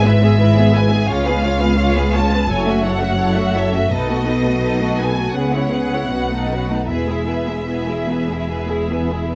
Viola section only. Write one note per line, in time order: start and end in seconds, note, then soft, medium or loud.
0.05 0.23 G#3 soft
0.05 0.23 E4 soft
0.22 0.40 B3 soft
0.22 0.40 G#4 soft
0.39 0.57 G#3 medium
0.39 0.56 E4 soft
0.58 0.76 B3 soft
0.58 0.76 G#4 soft
0.73 0.92 G#3 medium
0.73 0.92 E4 soft
0.90 1.09 B3 soft
0.90 1.09 G#4 soft
1.09 1.26 G#3 soft
1.09 1.26 C#4 medium
1.26 1.44 B3 soft
1.26 1.44 F4 soft
1.43 1.61 G#3 soft
1.43 1.61 C#4 soft
1.60 1.79 B3 soft
1.60 1.79 F4 soft
1.77 1.95 G#3 soft
1.77 1.95 C#4 soft
1.95 2.14 B3 soft
1.95 2.14 F4 soft
2.14 2.32 G#3 soft
2.14 2.32 C#4 soft
2.31 2.49 B3 soft
2.31 2.49 F4 soft
2.48 2.65 F#3 soft
2.48 2.65 E4 soft
2.66 2.84 A3 soft
2.66 2.84 C#4 soft
2.84 3.02 F#3 soft
2.84 3.02 E4 soft
3.00 3.18 A3 soft
3.00 3.19 C#4 soft
3.18 3.35 F#3 soft
3.18 3.35 E4 soft
3.37 3.55 A3 soft
3.37 3.55 C#4 soft
3.54 3.73 F#3 soft
3.54 3.73 E4 soft
3.73 3.91 A3 soft
3.73 3.91 C#4 soft
3.90 4.07 B3 medium
3.90 4.07 D#4 soft
4.08 4.26 A3 soft
4.08 4.24 B3 soft
4.25 4.42 B3 soft
4.25 4.44 D#4 soft
4.43 4.61 A3 soft
4.43 4.59 B3 soft
4.60 4.77 B3 soft
4.60 4.77 D#4 soft
4.78 4.96 A3 soft
4.78 4.94 B3 soft
4.95 5.12 B3 soft
4.95 5.14 D#4 soft
5.12 5.32 A3 soft
5.12 5.30 B3 soft
5.31 5.49 B3 soft
5.31 5.49 C#4 soft
5.50 5.70 G#3 soft
5.50 5.68 B3 soft
5.69 5.88 B3 soft
5.69 5.89 C#4 soft
5.89 6.08 G#3 soft
5.89 6.07 B3 soft
6.07 6.26 B3 soft
6.07 6.26 C#4 soft
6.27 6.47 A3 soft
6.27 6.44 B3 soft
6.45 6.65 B3 soft
6.45 6.65 C#4 soft
6.67 6.86 A3 soft
6.67 6.84 B3 soft
6.85 7.04 B3 soft
6.85 7.05 E4 soft
7.06 7.26 G#3 soft
7.06 7.26 G#4 soft
7.25 7.46 B3 soft
7.25 7.46 E4 soft
7.46 7.67 G#3 soft
7.46 7.67 G#4 soft
7.67 7.86 B3 soft
7.67 7.86 E4 soft
7.87 8.08 G#3 soft
7.87 8.08 G#4 soft
8.07 8.28 B3 soft
8.07 8.28 E4 soft
8.28 8.49 G#3 soft
8.28 8.49 G#4 soft
8.48 8.68 B3 soft
8.48 8.68 E4 soft
8.68 8.89 G#3 soft
8.68 8.89 G#4 soft
8.88 9.10 B3 soft
8.88 9.10 E4 soft
9.09 9.30 G#3 soft
9.09 9.30 G#4 soft
9.28 9.35 B3 soft
9.28 9.35 E4 soft